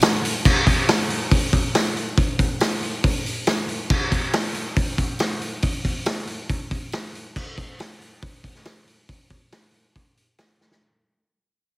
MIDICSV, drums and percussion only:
0, 0, Header, 1, 2, 480
1, 0, Start_track
1, 0, Tempo, 431965
1, 503, Time_signature, 4, 2, 24, 8
1, 13089, End_track
2, 0, Start_track
2, 0, Title_t, "Drums"
2, 20, Note_on_c, 9, 54, 119
2, 26, Note_on_c, 9, 46, 77
2, 30, Note_on_c, 9, 38, 101
2, 131, Note_off_c, 9, 54, 0
2, 137, Note_off_c, 9, 46, 0
2, 141, Note_off_c, 9, 38, 0
2, 275, Note_on_c, 9, 46, 66
2, 386, Note_off_c, 9, 46, 0
2, 504, Note_on_c, 9, 36, 120
2, 507, Note_on_c, 9, 49, 107
2, 615, Note_off_c, 9, 36, 0
2, 618, Note_off_c, 9, 49, 0
2, 739, Note_on_c, 9, 46, 70
2, 742, Note_on_c, 9, 36, 94
2, 851, Note_off_c, 9, 46, 0
2, 853, Note_off_c, 9, 36, 0
2, 984, Note_on_c, 9, 46, 91
2, 989, Note_on_c, 9, 38, 120
2, 992, Note_on_c, 9, 54, 90
2, 1095, Note_off_c, 9, 46, 0
2, 1100, Note_off_c, 9, 38, 0
2, 1104, Note_off_c, 9, 54, 0
2, 1223, Note_on_c, 9, 46, 56
2, 1334, Note_off_c, 9, 46, 0
2, 1460, Note_on_c, 9, 46, 88
2, 1461, Note_on_c, 9, 36, 110
2, 1571, Note_off_c, 9, 46, 0
2, 1572, Note_off_c, 9, 36, 0
2, 1701, Note_on_c, 9, 36, 96
2, 1702, Note_on_c, 9, 46, 67
2, 1812, Note_off_c, 9, 36, 0
2, 1813, Note_off_c, 9, 46, 0
2, 1941, Note_on_c, 9, 46, 91
2, 1946, Note_on_c, 9, 38, 114
2, 1948, Note_on_c, 9, 54, 105
2, 2052, Note_off_c, 9, 46, 0
2, 2057, Note_off_c, 9, 38, 0
2, 2059, Note_off_c, 9, 54, 0
2, 2185, Note_on_c, 9, 46, 51
2, 2296, Note_off_c, 9, 46, 0
2, 2418, Note_on_c, 9, 36, 121
2, 2418, Note_on_c, 9, 46, 81
2, 2529, Note_off_c, 9, 36, 0
2, 2529, Note_off_c, 9, 46, 0
2, 2654, Note_on_c, 9, 46, 60
2, 2658, Note_on_c, 9, 36, 89
2, 2765, Note_off_c, 9, 46, 0
2, 2769, Note_off_c, 9, 36, 0
2, 2895, Note_on_c, 9, 54, 99
2, 2899, Note_on_c, 9, 46, 91
2, 2904, Note_on_c, 9, 38, 125
2, 3006, Note_off_c, 9, 54, 0
2, 3010, Note_off_c, 9, 46, 0
2, 3015, Note_off_c, 9, 38, 0
2, 3140, Note_on_c, 9, 46, 54
2, 3251, Note_off_c, 9, 46, 0
2, 3379, Note_on_c, 9, 36, 110
2, 3380, Note_on_c, 9, 46, 78
2, 3490, Note_off_c, 9, 36, 0
2, 3491, Note_off_c, 9, 46, 0
2, 3623, Note_on_c, 9, 46, 60
2, 3734, Note_off_c, 9, 46, 0
2, 3854, Note_on_c, 9, 46, 85
2, 3855, Note_on_c, 9, 54, 100
2, 3859, Note_on_c, 9, 38, 114
2, 3965, Note_off_c, 9, 46, 0
2, 3966, Note_off_c, 9, 54, 0
2, 3970, Note_off_c, 9, 38, 0
2, 4095, Note_on_c, 9, 46, 58
2, 4207, Note_off_c, 9, 46, 0
2, 4333, Note_on_c, 9, 49, 107
2, 4336, Note_on_c, 9, 36, 111
2, 4444, Note_off_c, 9, 49, 0
2, 4447, Note_off_c, 9, 36, 0
2, 4574, Note_on_c, 9, 46, 66
2, 4576, Note_on_c, 9, 36, 85
2, 4685, Note_off_c, 9, 46, 0
2, 4688, Note_off_c, 9, 36, 0
2, 4815, Note_on_c, 9, 46, 88
2, 4818, Note_on_c, 9, 54, 91
2, 4820, Note_on_c, 9, 38, 127
2, 4926, Note_off_c, 9, 46, 0
2, 4929, Note_off_c, 9, 54, 0
2, 4931, Note_off_c, 9, 38, 0
2, 5051, Note_on_c, 9, 46, 58
2, 5162, Note_off_c, 9, 46, 0
2, 5293, Note_on_c, 9, 46, 83
2, 5297, Note_on_c, 9, 36, 110
2, 5405, Note_off_c, 9, 46, 0
2, 5408, Note_off_c, 9, 36, 0
2, 5536, Note_on_c, 9, 36, 91
2, 5537, Note_on_c, 9, 46, 69
2, 5648, Note_off_c, 9, 36, 0
2, 5648, Note_off_c, 9, 46, 0
2, 5768, Note_on_c, 9, 54, 100
2, 5776, Note_on_c, 9, 46, 90
2, 5780, Note_on_c, 9, 38, 106
2, 5879, Note_off_c, 9, 54, 0
2, 5887, Note_off_c, 9, 46, 0
2, 5892, Note_off_c, 9, 38, 0
2, 6017, Note_on_c, 9, 46, 61
2, 6128, Note_off_c, 9, 46, 0
2, 6249, Note_on_c, 9, 46, 88
2, 6257, Note_on_c, 9, 36, 111
2, 6360, Note_off_c, 9, 46, 0
2, 6368, Note_off_c, 9, 36, 0
2, 6498, Note_on_c, 9, 36, 80
2, 6499, Note_on_c, 9, 46, 64
2, 6609, Note_off_c, 9, 36, 0
2, 6610, Note_off_c, 9, 46, 0
2, 6729, Note_on_c, 9, 54, 89
2, 6733, Note_on_c, 9, 46, 88
2, 6738, Note_on_c, 9, 38, 127
2, 6840, Note_off_c, 9, 54, 0
2, 6845, Note_off_c, 9, 46, 0
2, 6849, Note_off_c, 9, 38, 0
2, 6970, Note_on_c, 9, 46, 58
2, 7082, Note_off_c, 9, 46, 0
2, 7216, Note_on_c, 9, 46, 69
2, 7218, Note_on_c, 9, 36, 115
2, 7327, Note_off_c, 9, 46, 0
2, 7329, Note_off_c, 9, 36, 0
2, 7458, Note_on_c, 9, 36, 94
2, 7461, Note_on_c, 9, 46, 70
2, 7569, Note_off_c, 9, 36, 0
2, 7572, Note_off_c, 9, 46, 0
2, 7694, Note_on_c, 9, 54, 99
2, 7701, Note_on_c, 9, 46, 82
2, 7706, Note_on_c, 9, 38, 113
2, 7805, Note_off_c, 9, 54, 0
2, 7812, Note_off_c, 9, 46, 0
2, 7817, Note_off_c, 9, 38, 0
2, 7945, Note_on_c, 9, 46, 63
2, 8057, Note_off_c, 9, 46, 0
2, 8179, Note_on_c, 9, 36, 115
2, 8182, Note_on_c, 9, 57, 102
2, 8290, Note_off_c, 9, 36, 0
2, 8293, Note_off_c, 9, 57, 0
2, 8420, Note_on_c, 9, 36, 100
2, 8422, Note_on_c, 9, 46, 56
2, 8531, Note_off_c, 9, 36, 0
2, 8533, Note_off_c, 9, 46, 0
2, 8656, Note_on_c, 9, 54, 85
2, 8665, Note_on_c, 9, 46, 84
2, 8670, Note_on_c, 9, 38, 121
2, 8767, Note_off_c, 9, 54, 0
2, 8776, Note_off_c, 9, 46, 0
2, 8781, Note_off_c, 9, 38, 0
2, 8906, Note_on_c, 9, 46, 59
2, 9017, Note_off_c, 9, 46, 0
2, 9141, Note_on_c, 9, 36, 119
2, 9145, Note_on_c, 9, 46, 89
2, 9252, Note_off_c, 9, 36, 0
2, 9256, Note_off_c, 9, 46, 0
2, 9379, Note_on_c, 9, 36, 83
2, 9379, Note_on_c, 9, 46, 72
2, 9490, Note_off_c, 9, 36, 0
2, 9490, Note_off_c, 9, 46, 0
2, 9503, Note_on_c, 9, 38, 31
2, 9614, Note_off_c, 9, 38, 0
2, 9615, Note_on_c, 9, 46, 88
2, 9619, Note_on_c, 9, 54, 105
2, 9620, Note_on_c, 9, 38, 118
2, 9726, Note_off_c, 9, 46, 0
2, 9730, Note_off_c, 9, 54, 0
2, 9731, Note_off_c, 9, 38, 0
2, 9862, Note_on_c, 9, 46, 59
2, 9973, Note_off_c, 9, 46, 0
2, 10101, Note_on_c, 9, 36, 115
2, 10101, Note_on_c, 9, 46, 92
2, 10212, Note_off_c, 9, 36, 0
2, 10212, Note_off_c, 9, 46, 0
2, 10334, Note_on_c, 9, 46, 66
2, 10340, Note_on_c, 9, 36, 81
2, 10445, Note_off_c, 9, 46, 0
2, 10451, Note_off_c, 9, 36, 0
2, 10581, Note_on_c, 9, 46, 94
2, 10586, Note_on_c, 9, 38, 121
2, 10587, Note_on_c, 9, 54, 89
2, 10692, Note_off_c, 9, 46, 0
2, 10697, Note_off_c, 9, 38, 0
2, 10698, Note_off_c, 9, 54, 0
2, 10821, Note_on_c, 9, 46, 53
2, 10932, Note_off_c, 9, 46, 0
2, 11063, Note_on_c, 9, 46, 77
2, 11064, Note_on_c, 9, 36, 108
2, 11174, Note_off_c, 9, 46, 0
2, 11175, Note_off_c, 9, 36, 0
2, 11304, Note_on_c, 9, 46, 68
2, 11415, Note_off_c, 9, 46, 0
2, 11538, Note_on_c, 9, 46, 81
2, 11543, Note_on_c, 9, 38, 113
2, 11548, Note_on_c, 9, 54, 102
2, 11649, Note_off_c, 9, 46, 0
2, 11654, Note_off_c, 9, 38, 0
2, 11659, Note_off_c, 9, 54, 0
2, 11791, Note_on_c, 9, 38, 56
2, 11902, Note_off_c, 9, 38, 0
2, 11906, Note_on_c, 9, 38, 84
2, 12017, Note_off_c, 9, 38, 0
2, 13089, End_track
0, 0, End_of_file